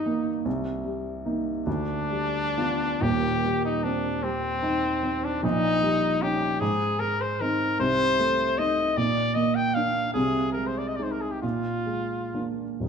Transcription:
Already playing: G1 G2 G3 A#3 D#4
0.06 A#3
0.45 C2
0.85 G3
1.26 A#3 D#4
1.66 D2 D4
2.10 G3
2.58 B3 F4
3.01 D#1 D#2 G4
3.44 G3
3.65 D#4
3.83 C4 D4
4.23 G3 C4
4.63 D#4
5.03 C4
5.24 D4
5.43 A#1 A#2 D#4
5.83 G3
6.22 C#4 D#4 G4
6.60 G#2 G#4
7.00 G#3 A#4
7.21 C5
7.41 C4 D#4 A#4
7.79 C2 C3 C5
8.20 A3
8.58 A3 D#4 D#5
8.97 A#2 D5
9.35 A#3 D#5
9.55 G5
9.74 A#3 D4 F5
10.14 C2 C3 G#4
10.52 A#4
10.57 G#3
10.67 C5
10.78 D5
10.88 D#5
10.96 G#3 D#4 D5
11.03 C5
11.11 A#4
11.21 G#4
11.31 G4
11.42 A#2 F4
11.86 G#3
12.34 A#3 D4
12.80 D#1 D#2 D#4

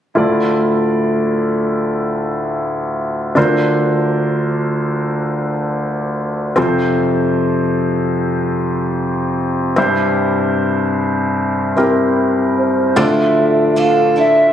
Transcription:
0.15 D2 A2 E4 F4 A4 D5
3.35 D2 D3 D4 F4 A#4 C5
6.56 F2 C3 C4 F4 A4 C5
9.76 C2 G2 C4 E4 G4 C5
11.77 C4 E4 G4 A#4
12.58 C5
12.96 D2 A2 D3 F3 A3 D4 E4 F4 A4 D5 E5
13.76 D3 F3 A3 D4 A4 F5
14.16 A3 D4 E4 A4 E5

